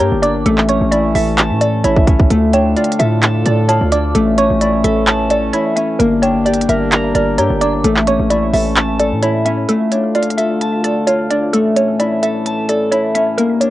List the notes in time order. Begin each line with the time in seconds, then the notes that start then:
Already playing: G3 A#3 D4 E4 A#4 A#5
0.00 G2 G4 C#5 A#5, closed hi-hat
0.12 G1
0.22 D4 D5 D6, closed hi-hat
0.46 A1 E3 A3 C#4 A4, closed hi-hat
0.58 clap
0.69 C#4 C#5 C#6, closed hi-hat
0.81 A1
0.91 E4 D5, closed hi-hat
1.15 A1 A4 E5, open hi-hat
1.38 A5, clap, closed hi-hat
1.50 A2
1.61 A4 D5, closed hi-hat
1.84 A1 E4 C#5, closed hi-hat
1.96 kick
2.07 C#4 E5, kick, closed hi-hat
2.20 kick
2.30 D2 D3 A3 D4 F4 A4, closed hi-hat
2.53 D4 C#5 G5, closed hi-hat
2.77 F4 D5, closed hi-hat
2.84 closed hi-hat
2.92 closed hi-hat
2.99 A2 A4 E5, closed hi-hat
3.23 A5, clap, closed hi-hat
3.46 A2 A4 D5, closed hi-hat
3.69 F4 C#5 A5, closed hi-hat
3.81 D2
3.92 D4 D5 D6, closed hi-hat
4.15 A1 E3 A3 C#4 A4, closed hi-hat
4.38 C#4 C#5 C#6, closed hi-hat
4.50 A1
4.61 E4 D5, closed hi-hat
4.84 A1 A4 E5, closed hi-hat
5.07 A5, clap, closed hi-hat
5.30 A4 D5, closed hi-hat
5.53 E4 C#5, closed hi-hat
5.76 C#4 E5, closed hi-hat
5.99 G1 G3 A#3 D4 A#4, closed hi-hat
6.22 D4 C#5 G5, closed hi-hat
6.46 G4 D5, closed hi-hat
6.54 closed hi-hat
6.61 closed hi-hat
6.69 G1 A#4 E5, closed hi-hat
6.92 A#5, clap, closed hi-hat
7.15 G1 A#4 D5, closed hi-hat
7.38 G2 G4 C#5 A#5, closed hi-hat
7.50 G1
7.61 D4 D5 D6, closed hi-hat
7.84 A1 E3 A3 C#4 A4, closed hi-hat
7.96 clap
8.07 C#4 C#5 C#6, closed hi-hat
8.19 A1
8.30 E4 D5, closed hi-hat
8.53 A1 A4 E5, open hi-hat
8.76 A5, clap, closed hi-hat
8.99 A4 D5, closed hi-hat
9.12 A2
9.22 E4 C#5, closed hi-hat
9.45 C#4 E5, closed hi-hat
9.69 D2 D3 A3 F4 A4, closed hi-hat
9.92 D4 C#5, closed hi-hat
10.15 F4 D5, closed hi-hat
10.23 closed hi-hat
10.30 closed hi-hat
10.38 A4 E5, closed hi-hat
10.61 A5, closed hi-hat
10.84 A4 D5, closed hi-hat
11.07 F4 C#5, closed hi-hat
11.30 D4 D5, closed hi-hat
11.53 A2 E3 A3 C#4 A4, closed hi-hat
11.76 C#4 C#5, closed hi-hat
12.00 E4 D5, closed hi-hat
12.23 A4 E5, closed hi-hat
12.46 A5, closed hi-hat
12.69 A4 D5, closed hi-hat
12.91 E4 C#5, closed hi-hat
13.15 C#4 E5, closed hi-hat
13.38 G2 G3 A#3 D4 A#4, closed hi-hat
13.61 D4 C#5, closed hi-hat